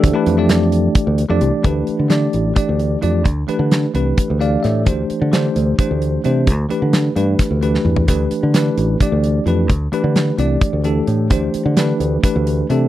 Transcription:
<<
  \new Staff \with { instrumentName = "Tine electric piano" } { \time 7/8 \key d \dorian \tempo 4 = 130 << { r2. r8 | r2. r8 | r2 r8 f''8 e''8 | r2. r8 |
r2. r8 | r2. r8 | r2. r8 | r2. r8 | } \\ { <e a d' g' a'>16 <e a d' g' b'>8 <e a d' g' d''>4.~ <e a d' g' d''>16 r16 <e a d' g' d''>8. | <e a d' g' b'>4 <e a d' g' d''>4 <e a d' g' d''>4 <e a d' g' d''>8 | r8 <e a d' g' b'>4 <e a d' g' b'>4 <e a d' g' d''>4 | <e a d' g' c''>4 <e a d' g' c''>4 <e a d' g' c''>4 <e a d' g' c''>8 |
r8 <e a d' g' b'>4 <e a d' g' b'>4 <e a d' g' b'>4 | <e a d' g' b'>4 <e a d' g' b'>4 <e a d' g' d''>4 <e a d' g' b'>8 | r8 <e a d' g' b'>4 <e a d' g' d''>4 <e a d' g' a'>4 | <e a d' g' c''>4 <e a d' g' b'>4 <e a d' g' b'>4 <e a d' g' a'>8 | } >> }
  \new Staff \with { instrumentName = "Fingered electric bass" } { \clef bass \time 7/8 \key d \dorian d,16 r16 f,4.~ f,16 d,8 f,16 c,16 r16 | d,8 r16 d8. a,,8 r16 d,8. f,8 | d,8 r16 d8. c,8 r16 d,8. a,8 | d,8 r16 d8. d,8 r16 d,8. c8 |
d,8 r16 d8. g,8 r16 d,8. e,8 | d,8 r16 d8. a,,8 r16 d,8. f,8 | d,8 r16 d8. c,8 r16 d,8. a,8 | d,8 r16 d8. d,8 r16 d,8. c8 | }
  \new DrumStaff \with { instrumentName = "Drums" } \drummode { \time 7/8 <hh bd>8 hh8 <hh sn>8 hh8 <hh bd>8 hh8 hh8 | <hh bd>8 hh8 <hh sn>8 hh8 <hh bd>8 hh8 hh8 | <hh bd>8 hh8 <hh sn>8 hh8 <hh bd>8 hh8 <hh sn>8 | <hh bd>8 hh8 <hh sn>8 hh8 <hh bd>8 hh8 hh8 |
<hh bd>8 hh8 <hh sn>8 hh8 <hh bd sn>8 hh16 sn16 toml16 tomfh16 | <hh bd>8 hh8 <hh sn>8 hh8 <hh bd>8 hh8 hh8 | <hh bd>8 hh8 <hh sn>8 hh8 <hh bd>8 hh8 hh8 | <hh bd>8 hh8 <hh sn>8 hh8 <hh bd>8 hh8 hh8 | }
>>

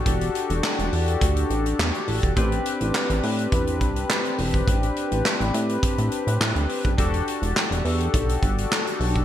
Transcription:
<<
  \new Staff \with { instrumentName = "Analog polysynth" } { \time 4/4 \key e \minor \tempo 4 = 104 <d' fis' g' a'>1 | <c' d' g' b'>1~ | <c' d' g' b'>1 | <d' fis' g' a'>1 | }
  \new Staff \with { instrumentName = "Analog synth bass" } { \clef bass \time 4/4 \key e \minor e,,8 r16 e,,16 r16 e,,16 e,8 d,8 a,,8 e,16 r16 a,,16 e,,16 | a,,8 r16 a,,16 r16 a,,16 a,8 e,8 c,8 r8 e,,8 | a,,8 r16 a,,16 r16 a,,16 a,8 r16 a,16 r16 a,16 a,16 d,16 r16 b,,16 | e,,8 r16 e,,16 r16 e,,16 e,8 b,,8 g,,8 r8 b,,8 | }
  \new DrumStaff \with { instrumentName = "Drums" } \drummode { \time 4/4 <hh bd>16 hh16 hh16 hh16 <hc sn>16 hh16 hho16 hh16 <hh bd>16 hh16 hh16 hh16 <hc sn>16 hh16 hho16 <hh bd>16 | <hh bd>16 hh16 hh16 hh16 <hc sn>16 hh16 hho16 hh16 <hh bd>16 hh16 <hh bd>16 hh16 <hc sn>16 hh16 hho16 <hh bd>16 | <hh bd>16 hh16 hh16 hh16 <hc sn>16 hh16 hh16 hh16 <hh bd>16 hh16 hh16 hh16 <hc sn>16 hh16 hho16 <hh bd>16 | <hh bd>16 hh16 hh16 hh16 <hc sn>16 hh16 hho16 hh16 <hh bd>16 hh16 <hh bd>16 hh16 <hc sn>16 hh16 hho16 <hh bd>16 | }
>>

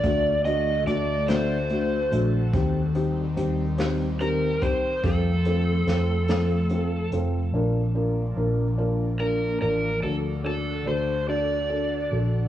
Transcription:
<<
  \new Staff \with { instrumentName = "Electric slide guitar" } { \time 6/8 \key bes \major \tempo 4. = 48 d''8 ees''8 d''8 c''4 r8 | r2 bes'8 c''8 | a'2~ a'8 r8 | r2 bes'8 bes'8 |
a'8 a'8 c''8 d''4 r8 | }
  \new Staff \with { instrumentName = "Felt piano" } { \time 6/8 \key bes \major <a d' fis'>8 <a d' fis'>8 <a d' fis'>8 <a d' fis'>8 <a d' fis'>8 <a d' fis'>8 | <c' ees' g'>8 <c' ees' g'>8 <c' ees' g'>8 <c' ees' g'>8 <c' ees' g'>8 <c' ees' g'>8 | <c' f' a'>8 <c' f' a'>8 <c' f' a'>8 <c' f' a'>8 <c' f' a'>8 <c' f' a'>8 | <d' f' bes'>8 <d' f' bes'>8 <d' f' bes'>8 <d' f' bes'>8 <d' f' bes'>8 <d' f' bes'>8 |
<d' fis' a'>8 <d' fis' a'>8 <d' fis' a'>8 <d' fis' a'>8 <d' fis' a'>8 <d' fis' a'>8 | }
  \new Staff \with { instrumentName = "Analog synth pad" } { \time 6/8 \key bes \major << { <d a'>2. | c'2.~ | c'2. | d'2. |
<d a'>2. | } \\ { <a fis'>2. | <ees g>2. | <f a>2. | <f bes>2. |
fis'2. | } >> }
  \new Staff \with { instrumentName = "Fingered electric bass" } { \clef bass \time 6/8 \key bes \major d,4 d,4. bes,,8 | ees,4 ees,4. c,8 | f,4 f,4. f,,8 | bes,,4 bes,,4. a,,8 |
d,4 d,4. bes,,8 | }
  \new DrumStaff \with { instrumentName = "Drums" } \drummode { \time 6/8 <hh bd>8 hh8 hh8 <hh sn>8 hh8 hh8 | <hh bd>8 hh8 hh8 <hh sn>8 hh8 <hh bd>8 | <hh bd>8 hh8 <hh sn>8 <hh sn>8 hh8 hh8 | r4. r4. |
r4. r4. | }
>>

